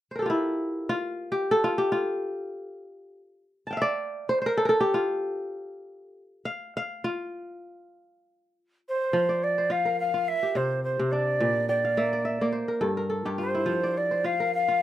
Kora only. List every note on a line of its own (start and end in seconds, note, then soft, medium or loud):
0.11 1.30 C5 soft
0.16 1.51 A4 soft
0.16 1.43 A#4 soft
0.22 0.89 F4 soft
0.22 1.31 G4 soft
0.30 0.95 E4 medium
0.89 1.64 F4 medium
1.32 1.78 G4 medium
1.51 2.83 A4 medium
1.64 1.91 F4 medium
1.78 3.19 G4 medium
1.92 3.43 F4 medium
3.67 4.64 G5 soft
3.67 4.52 A5 soft
3.73 4.72 F5 soft
3.77 4.80 E5 medium
3.82 4.92 D5 medium
4.29 4.41 C5 medium
4.42 5.60 C5 medium
4.46 4.63 A#4 medium
4.57 4.69 A4 medium
4.65 6.01 A4 medium
4.65 4.75 A#4 medium
4.80 6.22 G4 medium
4.94 6.45 F4 medium
6.45 6.76 F5 medium
6.77 7.77 F5 medium
7.04 8.56 F4 medium
9.13 10.32 F3 medium
9.29 10.40 D5 medium
9.58 10.77 C5 medium
9.70 10.14 F4 medium
9.85 11.13 A#4 medium
10.14 11.65 F4 medium
10.43 11.84 G4 medium
10.55 10.98 C3 medium
10.99 11.45 C3 medium
11.13 12.81 D4 medium
11.40 12.59 A#2 medium
11.69 12.62 G5 medium
11.85 12.31 F5 medium
11.97 12.41 A#3 medium
11.97 12.24 E5 medium
12.13 12.41 D5 medium
12.25 13.28 E5 medium
12.41 12.87 A#3 medium
12.41 13.53 D5 medium
12.52 13.71 C5 medium
12.68 12.97 A#4 medium
12.81 13.25 G2 medium
12.81 13.09 A4 medium
12.97 14.24 A#4 medium
13.10 14.46 A4 medium
13.25 13.73 G2 medium
13.25 14.67 G4 medium
13.38 14.24 F4 medium
13.55 14.30 E4 medium
13.66 14.82 F3 medium
13.83 14.82 D5 medium
14.11 14.82 C5 medium
14.24 14.68 F4 medium
14.40 14.82 A#4 medium
14.68 14.82 F4 medium